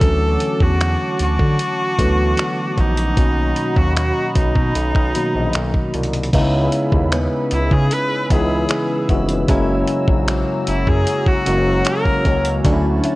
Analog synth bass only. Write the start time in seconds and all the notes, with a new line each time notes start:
0.02 D2
0.61 E2
1.20 D2
1.40 D3
1.99 D2
2.78 A#1
3.17 B1
3.77 D#2
4.36 B1
4.56 B2
4.76 B1
4.95 B1
5.35 A#1
5.55 B1
5.94 C2
6.33 C#2
6.92 D#2
7.52 C#2
7.71 C#3
8.30 C#2
9.09 F1
9.49 F#1
10.08 A#1
10.68 F#1
10.87 F#2
11.47 F#1
12.25 C#2
12.65 D2